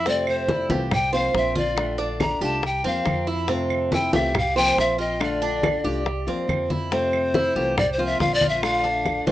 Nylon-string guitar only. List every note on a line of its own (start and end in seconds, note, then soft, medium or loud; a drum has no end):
0.06 0.69 C3 medium
0.06 0.70 A3 medium
0.06 0.69 C4 medium
0.06 0.70 F4 medium
0.70 0.91 E3 medium
0.70 0.91 A3 medium
0.70 0.91 C4 medium
0.70 0.91 F4 medium
0.91 muted nylon-string guitar stroke medium
1.13 1.32 F3 medium
1.13 1.33 A#3 medium
1.13 1.33 C4 medium
1.13 1.33 F4 medium
1.33 1.76 F3 soft
1.33 1.76 A#3 medium
1.33 1.76 C4 medium
1.33 1.77 F4 medium
1.76 2.40 D3 medium
1.76 2.41 A3 medium
1.76 2.41 D4 medium
1.76 2.41 F4 medium
2.41 2.63 A3 medium
2.41 2.62 D4 medium
2.41 2.62 F4 medium
2.63 muted nylon-string guitar stroke medium
2.84 3.04 F3 medium
2.84 3.05 A#3 medium
2.84 3.05 C4 medium
2.84 3.05 F4 medium
3.06 3.48 F3 soft
3.06 3.48 A#3 medium
3.06 3.48 C4 soft
3.06 3.48 F4 medium
3.48 4.12 C3 medium
3.48 4.12 A3 medium
3.48 4.12 C4 medium
3.48 4.12 F4 medium
4.13 4.34 E3 medium
4.13 4.34 A3 medium
4.13 4.33 C4 medium
4.13 4.33 F4 medium
4.34 muted nylon-string guitar stroke medium
4.55 4.76 F3 medium
4.55 4.77 A#3 medium
4.55 4.76 C4 medium
4.55 4.76 F4 medium
4.77 5.19 F3 soft
4.77 5.19 A#3 soft
4.77 5.20 C4 soft
4.77 5.20 F4 soft
5.19 5.83 D3 medium
5.19 5.83 A3 medium
5.19 5.84 D4 medium
5.19 5.83 F4 medium
5.84 6.05 A3 soft
5.84 6.05 D4 medium
5.84 6.05 F4 medium
6.06 muted nylon-string guitar stroke medium
6.27 6.46 F3 medium
6.27 6.47 A#3 medium
6.27 6.47 C4 medium
6.27 6.47 F4 medium
6.47 6.90 F3 medium
6.47 6.90 A#3 medium
6.47 6.91 C4 soft
6.47 6.91 F4 medium
6.91 7.55 C3 medium
6.91 7.55 A3 medium
6.91 7.55 C4 medium
6.91 7.55 F4 medium
7.55 7.77 E3 medium
7.55 7.77 A3 medium
7.55 7.76 C4 medium
7.55 7.76 F4 medium
7.77 muted nylon-string guitar stroke medium
7.98 8.18 F3 medium
7.98 8.19 A#3 medium
7.98 8.19 C4 medium
7.98 8.19 F4 medium
8.19 8.62 F3 soft
8.19 8.62 A#3 medium
8.19 8.62 C4 soft
8.19 8.62 F4 medium
8.62 9.26 D3 medium
8.62 9.26 A3 medium
8.62 9.26 D4 medium
8.62 9.26 F4 medium
9.26 9.32 A3 medium
9.26 9.32 D4 medium
9.26 9.32 F4 medium